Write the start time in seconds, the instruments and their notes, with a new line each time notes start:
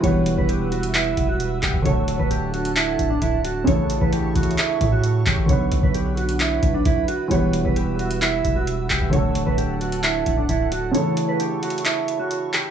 Already playing: ambient pad B4 F#5
0.01 808-style bass E1, grand piano E3 G3 B3, clean electric guitar C#5, ambient pad E5 E6, kick, closed hi-hat
0.05 grand piano F#4 B4
0.26 closed hi-hat
0.38 808-style bass E1, clean electric guitar B4, kick
0.49 clean electric guitar G4, closed hi-hat
0.72 clean electric guitar F#4, closed hi-hat
0.83 closed hi-hat
0.94 clean electric guitar E4, clap, closed hi-hat
1.17 808-style bass E1, kick, closed hi-hat
1.29 clean electric guitar F#4
1.40 closed hi-hat
1.63 808-style bass E1, clean electric guitar G4, kick, clap, closed hi-hat
1.74 kick
1.82 808-style bass D1, grand piano D3 F#3 A3, ambient pad D4 A4 A5, clean electric guitar C#5, kick, closed hi-hat
1.87 grand piano F#4 A4
2.08 808-style bass D1, closed hi-hat
2.19 808-style bass D1, clean electric guitar B4, kick
2.31 clean electric guitar G4, closed hi-hat
2.54 clean electric guitar F#4, closed hi-hat
2.65 closed hi-hat
2.76 clean electric guitar E4, clap, closed hi-hat
2.99 808-style bass D1, kick, closed hi-hat
3.10 clean electric guitar D4
3.22 808-style bass D1, clean electric guitar E4, kick, closed hi-hat
3.45 clean electric guitar F#4, closed hi-hat
3.64 808-style bass A1, grand piano C#3 E3 A3, clean electric guitar C#5, ambient pad C#5 E5 C#6, kick, closed hi-hat
3.69 grand piano E4 A4
3.90 closed hi-hat
4.01 808-style bass A1, clean electric guitar B4, kick
4.13 clean electric guitar G4, closed hi-hat
4.36 808-style bass A1, clean electric guitar F#4, kick, closed hi-hat
4.43 closed hi-hat
4.51 closed hi-hat
4.58 clean electric guitar E4, clap, closed hi-hat
4.81 808-style bass A2, kick, closed hi-hat
4.92 clean electric guitar F#4
5.04 closed hi-hat
5.26 808-style bass A1, clean electric guitar G4, kick, clap, closed hi-hat
5.38 kick
5.46 808-style bass B1, grand piano D3 F#3 B3, ambient pad D4 B4 F#5, clean electric guitar C#5, kick, closed hi-hat
5.51 grand piano F#4 B4
5.72 808-style bass B1, closed hi-hat
5.83 808-style bass B1, clean electric guitar B4, kick
5.94 clean electric guitar G4, closed hi-hat
6.17 clean electric guitar F#4, closed hi-hat
6.29 closed hi-hat
6.40 clean electric guitar E4, clap, closed hi-hat
6.63 808-style bass B1, kick, closed hi-hat
6.74 clean electric guitar D4
6.85 808-style bass B1, clean electric guitar E4, kick, closed hi-hat
7.08 clean electric guitar F#4, closed hi-hat
7.28 808-style bass E1, grand piano E3 G3 B3, clean electric guitar C#5, ambient pad E5 E6, kick, closed hi-hat
7.33 grand piano F#4 B4
7.53 closed hi-hat
7.65 808-style bass E1, clean electric guitar B4, kick
7.76 clean electric guitar G4, closed hi-hat
7.99 clean electric guitar F#4, closed hi-hat
8.11 closed hi-hat
8.22 clean electric guitar E4, clap, closed hi-hat
8.45 808-style bass E1, kick, closed hi-hat
8.56 clean electric guitar F#4
8.67 closed hi-hat
8.90 808-style bass E1, clean electric guitar G4, kick, clap, closed hi-hat
9.01 kick
9.10 808-style bass D1, grand piano D3 F#3 A3, ambient pad D4 A4 A5, clean electric guitar C#5, kick, closed hi-hat
9.14 grand piano F#4 A4
9.35 808-style bass D1, closed hi-hat
9.46 808-style bass D1, clean electric guitar B4, kick
9.58 clean electric guitar G4, closed hi-hat
9.81 clean electric guitar F#4, closed hi-hat
9.92 closed hi-hat
10.03 clean electric guitar E4, clap, closed hi-hat
10.26 808-style bass D1, kick, closed hi-hat
10.37 clean electric guitar D4
10.49 808-style bass D1, clean electric guitar E4, kick, closed hi-hat
10.72 clean electric guitar F#4, closed hi-hat
10.91 grand piano C#3 E3 A3, clean electric guitar C#5, ambient pad C#5 E5 C#6, closed hi-hat
10.96 grand piano E4 A4
11.17 closed hi-hat
11.29 clean electric guitar B4
11.40 clean electric guitar G4, closed hi-hat
11.63 clean electric guitar F#4, closed hi-hat
11.70 closed hi-hat
11.78 closed hi-hat
11.85 clean electric guitar E4, clap, closed hi-hat
12.08 closed hi-hat
12.19 clean electric guitar F#4
12.31 closed hi-hat
12.54 clean electric guitar G4, clap, closed hi-hat